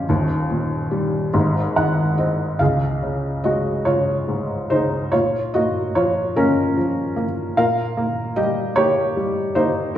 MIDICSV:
0, 0, Header, 1, 2, 480
1, 0, Start_track
1, 0, Key_signature, -5, "major"
1, 0, Tempo, 839161
1, 47, Time_signature, 6, 3, 24, 8
1, 3409, Tempo, 798935
1, 5823, End_track
2, 0, Start_track
2, 0, Title_t, "Felt piano"
2, 0, Program_c, 0, 0
2, 0, Control_c, 0, 64, 127
2, 0, Note_on_c, 0, 53, 58
2, 0, Note_on_c, 0, 61, 52
2, 0, Note_on_c, 0, 65, 64
2, 0, Note_on_c, 0, 67, 80
2, 0, Note_on_c, 0, 73, 67
2, 0, Note_on_c, 0, 75, 92
2, 0, Note_on_c, 0, 77, 93
2, 51, Note_on_c, 0, 27, 57
2, 52, Note_on_c, 0, 39, 62
2, 54, Control_c, 0, 64, 0
2, 58, Note_off_c, 0, 53, 0
2, 58, Note_off_c, 0, 61, 0
2, 58, Note_off_c, 0, 67, 0
2, 59, Note_off_c, 0, 75, 0
2, 145, Control_c, 0, 64, 127
2, 286, Note_on_c, 0, 46, 48
2, 521, Note_on_c, 0, 55, 50
2, 740, Note_off_c, 0, 27, 0
2, 743, Note_off_c, 0, 39, 0
2, 750, Note_off_c, 0, 46, 0
2, 755, Note_off_c, 0, 55, 0
2, 763, Note_on_c, 0, 44, 61
2, 764, Note_on_c, 0, 32, 56
2, 769, Control_c, 0, 64, 0
2, 881, Control_c, 0, 64, 127
2, 980, Note_off_c, 0, 77, 0
2, 986, Note_off_c, 0, 65, 0
2, 986, Note_off_c, 0, 73, 0
2, 1009, Note_on_c, 0, 78, 55
2, 1010, Note_on_c, 0, 51, 42
2, 1232, Note_off_c, 0, 78, 0
2, 1246, Note_on_c, 0, 75, 55
2, 1250, Note_on_c, 0, 60, 43
2, 1465, Note_off_c, 0, 32, 0
2, 1466, Note_off_c, 0, 44, 0
2, 1469, Note_off_c, 0, 75, 0
2, 1475, Note_off_c, 0, 51, 0
2, 1481, Note_off_c, 0, 60, 0
2, 1483, Note_on_c, 0, 77, 56
2, 1490, Note_on_c, 0, 37, 45
2, 1494, Control_c, 0, 64, 0
2, 1495, Note_on_c, 0, 68, 44
2, 1585, Control_c, 0, 64, 127
2, 1731, Note_on_c, 0, 49, 40
2, 1947, Note_off_c, 0, 68, 0
2, 1966, Note_on_c, 0, 75, 57
2, 1971, Note_on_c, 0, 56, 42
2, 1974, Note_on_c, 0, 66, 44
2, 1978, Note_off_c, 0, 77, 0
2, 2190, Note_off_c, 0, 75, 0
2, 2194, Note_off_c, 0, 66, 0
2, 2204, Note_on_c, 0, 73, 64
2, 2205, Note_off_c, 0, 49, 0
2, 2210, Note_on_c, 0, 65, 52
2, 2214, Note_on_c, 0, 49, 42
2, 2448, Note_on_c, 0, 44, 37
2, 2669, Note_off_c, 0, 65, 0
2, 2687, Note_off_c, 0, 49, 0
2, 2689, Note_on_c, 0, 72, 65
2, 2696, Note_on_c, 0, 49, 41
2, 2697, Note_on_c, 0, 63, 50
2, 2703, Note_off_c, 0, 73, 0
2, 2911, Note_off_c, 0, 37, 0
2, 2912, Note_off_c, 0, 56, 0
2, 2915, Note_off_c, 0, 72, 0
2, 2917, Note_off_c, 0, 44, 0
2, 2919, Note_off_c, 0, 63, 0
2, 2927, Note_on_c, 0, 73, 66
2, 2928, Note_off_c, 0, 49, 0
2, 2933, Note_on_c, 0, 65, 52
2, 2938, Note_on_c, 0, 46, 54
2, 2939, Control_c, 0, 64, 0
2, 3050, Control_c, 0, 64, 127
2, 3156, Note_off_c, 0, 65, 0
2, 3168, Note_on_c, 0, 75, 64
2, 3174, Note_on_c, 0, 66, 50
2, 3176, Note_off_c, 0, 73, 0
2, 3179, Note_on_c, 0, 58, 43
2, 3392, Note_off_c, 0, 66, 0
2, 3405, Note_on_c, 0, 73, 65
2, 3410, Note_on_c, 0, 53, 45
2, 3411, Note_on_c, 0, 65, 51
2, 3413, Note_off_c, 0, 75, 0
2, 3635, Note_off_c, 0, 65, 0
2, 3647, Note_off_c, 0, 58, 0
2, 3652, Note_on_c, 0, 70, 71
2, 3656, Note_off_c, 0, 73, 0
2, 3656, Note_on_c, 0, 58, 47
2, 3656, Note_on_c, 0, 61, 57
2, 3887, Note_off_c, 0, 53, 0
2, 3896, Note_on_c, 0, 53, 46
2, 4123, Note_off_c, 0, 58, 0
2, 4132, Note_on_c, 0, 58, 48
2, 4168, Note_off_c, 0, 70, 0
2, 4170, Note_off_c, 0, 61, 0
2, 4350, Note_off_c, 0, 46, 0
2, 4359, Note_off_c, 0, 53, 0
2, 4365, Note_off_c, 0, 58, 0
2, 4377, Note_on_c, 0, 46, 55
2, 4378, Note_on_c, 0, 77, 77
2, 4379, Control_c, 0, 64, 0
2, 4380, Note_on_c, 0, 70, 61
2, 4481, Control_c, 0, 64, 127
2, 4618, Note_on_c, 0, 58, 49
2, 4832, Note_off_c, 0, 70, 0
2, 4853, Note_on_c, 0, 75, 66
2, 4855, Note_on_c, 0, 67, 54
2, 4857, Note_on_c, 0, 55, 44
2, 4869, Note_off_c, 0, 77, 0
2, 5077, Note_off_c, 0, 67, 0
2, 5090, Note_off_c, 0, 58, 0
2, 5090, Note_on_c, 0, 73, 80
2, 5098, Note_on_c, 0, 67, 59
2, 5099, Note_off_c, 0, 75, 0
2, 5099, Note_on_c, 0, 58, 46
2, 5326, Note_off_c, 0, 55, 0
2, 5335, Note_on_c, 0, 55, 41
2, 5549, Note_off_c, 0, 67, 0
2, 5564, Note_off_c, 0, 58, 0
2, 5568, Note_on_c, 0, 72, 69
2, 5571, Note_on_c, 0, 63, 54
2, 5573, Note_on_c, 0, 58, 43
2, 5584, Note_off_c, 0, 73, 0
2, 5787, Note_off_c, 0, 46, 0
2, 5791, Note_off_c, 0, 72, 0
2, 5793, Note_off_c, 0, 63, 0
2, 5796, Note_off_c, 0, 55, 0
2, 5803, Note_off_c, 0, 58, 0
2, 5816, Control_c, 0, 64, 0
2, 5823, End_track
0, 0, End_of_file